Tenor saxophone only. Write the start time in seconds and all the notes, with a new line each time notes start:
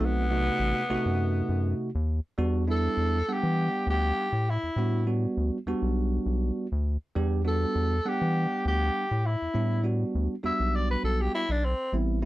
0.05 B3
2.71 A4
3.32 G4
3.90 G4
4.50 E4
7.48 A4
8.08 G4
8.68 G4
9.26 E4
10.46 E5
10.76 D5
10.91 B4
11.05 A4
11.21 G4
11.35 E4
11.51 D4
11.65 C4